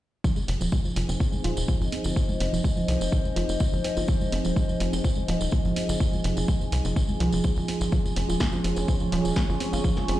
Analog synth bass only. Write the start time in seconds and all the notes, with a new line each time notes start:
0.48 F1
0.61 D#1
0.96 F1
1.09 F1
1.44 D#1
1.57 D#1
1.81 G1
2.05 G1
2.40 F1
2.53 F1
2.88 C2
3.01 F1
3.36 F1
3.49 F1
3.73 G1
3.97 G1
4.32 F1
4.45 D#1
4.80 F1
4.93 F1
5.28 D#1
5.41 D#1
5.65 G1
5.89 G1
6.24 F1
6.37 F1
6.72 C2
6.85 F1
7.20 C2
7.33 F1
7.57 G#1
7.81 G#1
8.16 F1
8.29 D#1
8.64 F1
8.77 F1
9.12 D#1
9.25 D#1
9.49 G1
9.73 G1
10.08 F1